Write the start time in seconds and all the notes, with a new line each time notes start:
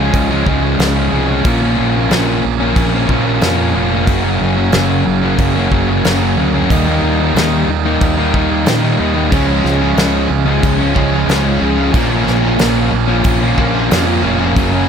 Already playing: C#2 C#3 C#4
0.00 F3 G#3
0.13 C#2, kick, crash
0.31 F3 G#3 C#4
0.46 C#2 C#3 F3 G#3 C#4, kick
0.62 F3 G#3 C#4
0.79 C#2 C#3 F3 G#3 C#4, snare, crash
0.95 F3 G#3 C#4
1.11 C2 C#3 F3 G#3 C#4
1.28 F3 G#3 C#4
1.43 A#1 A#2 F3 A#3 C#4, kick, crash
1.61 F3 A#3 C#4
1.76 A#1 A#2 F3 A#3 C#4
1.95 F3 A#3 C#4
2.10 A#1 A#2 F3 A#3 C#4, snare, crash
2.42 A#1 A#2 F3 A#3 C#4, muted distorted electric guitar stroke
2.60 F3 A#3 C#4
2.76 A#1, kick, crash
2.93 F3 A#3 C#4
3.08 A#1 A#2 F3 A#3 C#4, kick
3.24 F3 A#3 C#4
3.41 F2 A#2 F3 A#3 C#4, snare, crash
3.57 F3 A#3 C#4
3.73 F1 A#2 F3 A#3 C#4
3.91 F3 A#3 C#4
4.07 F#1 F#2 C#3 F#3 A#3 C#4, kick, crash
4.23 F#3 A#3 C#4
4.41 F#1 C#3 F#3 A#3 C#4
4.55 F#3 A#3 C#4
4.72 F#1 F#2 C#3 F#3 A#3 C#4, snare, crash
5.04 F#1 C#3 F#3 A#3, muted distorted electric guitar stroke
5.08 C#4
5.21 F#3 A#3 C#4
5.38 F#1, kick, crash
5.54 F#3 A#3 C#4
5.70 F#1 C#3 F#3 A#3 C#4, kick
5.89 F#3 A#3 C#4
6.03 F#1 F#2 C#3 F#3 A#3 C#4, snare, crash
6.21 F#3 A#3 C#4
6.36 D2 C#3 F#3 A#3 C#4
6.54 F#3 A#3 C#4
6.70 D#2 D#3 G3 A#3 D#4, kick, crash
6.87 G3 A#3 D#4
7.02 D#2 D#3 G3 A#3 D#4
7.19 G3 A#3 D#4
7.35 D#2 D#3 G3 A#3 D#4, snare, crash
7.67 D#2 D#3 G3 A#3 D#4, muted distorted electric guitar stroke
7.85 G3 A#3 D#4
8.01 D#2, kick, crash
8.18 G3 A#3 D#4
8.34 D#2 D#3 G3 A#3 D#4, kick
8.50 G3 A#3 D#4
8.66 A#2 D#3 G3 A#3 D#4, snare, crash
8.82 G3 A#3 D#4
8.99 D#2 D#3 G3 A#3 D#4
9.14 G3 A#3 D#4
9.31 C#2 C#3 F3 G#3 C#4, kick, crash
9.48 F3 G#3 C#4
9.63 C#2 C#3 F3 G#3 C#4, snare
9.79 F3 G#3 C#4
9.96 C#2 C#3 F3 G#3 C#4, snare, crash
10.29 C#2 C#3 F3 G#3 C#4, muted distorted electric guitar stroke
10.45 F3 G#3 C#4
10.63 C#2, kick, crash
10.78 F3 G#3 C#4
10.94 C#2 C#3 F3 G#3 C#4, kick
10.98 C#3 C#4
11.12 F3 G#3 C#4
11.27 C#2 C#3 F3 G#3 C#4, snare, crash
11.43 F3 G#3 C#4
11.60 C#2 C#3 F3 G#3 C#4
11.77 F3 G#3 C#4
11.92 A#1 A#2 F3 A#3 C#4, kick, crash
12.10 F3 A#3 C#4
12.25 A#1 A#2 F3 A#3 C#4, snare
12.43 F3 A#3 C#4
12.58 A#1 A#2 F3 A#3 C#4, snare, crash
12.92 A#1 A#2 F3 A#3, muted distorted electric guitar stroke
12.96 C#4
13.07 F3 A#3 C#4
13.24 A#1, kick, crash
13.40 F3 A#3 C#4
13.56 A#1 A#2 F3 A#3 C#4, kick
13.61 A#2
13.74 F3 A#3 C#4
13.89 F2 A#2 F3 A#3 C#4, snare, crash
14.06 F3 A#3 C#4
14.23 F1 A#2 F3 A#3 C#4
14.39 F3 A#3 C#4
14.56 F#1 F#2 C#3 F#3 A#3 C#4, kick, crash
14.73 F#3 A#3 C#4